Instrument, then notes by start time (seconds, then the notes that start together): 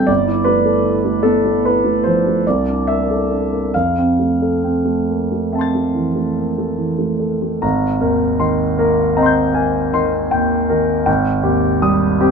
grand piano
Already playing: G3 C4 D4 E4 A4 E5 G5
0.07 G1 D5
0.27 E4
0.44 A3 B4
0.65 A4
0.84 E4
1.05 A3
1.23 B3 A4
1.45 A3
1.65 E4 B4
1.85 A3
2.04 F3 C5
2.27 A3
2.47 C2 D5
2.69 D4
2.87 A#3 E5
3.10 A4
3.31 D4
3.53 A#3
3.74 F2 F5
3.98 C4
4.19 A3
4.42 A4
4.64 C4
4.85 A3
5.09 A#3
5.32 A3
5.52 C4 E5 A5
5.59 C6 A6
5.75 A3
5.94 E3
6.16 A3
6.36 A#3
6.58 A3
6.78 E3
6.99 A3
7.20 A4
7.42 A3
7.62 G#1 A#5
8.01 D#2 A#4
8.40 D#3 C6
8.79 A#3 A#4
9.17 C4 D#5 A#5
9.23 C6 G6
9.54 A#3 G#5
9.93 D#3 C6
10.31 D#2 G5
10.70 D#3 A#4
11.06 G#1 G5
11.43 D#2 G4
11.82 G3 D#6
12.20 C4 G4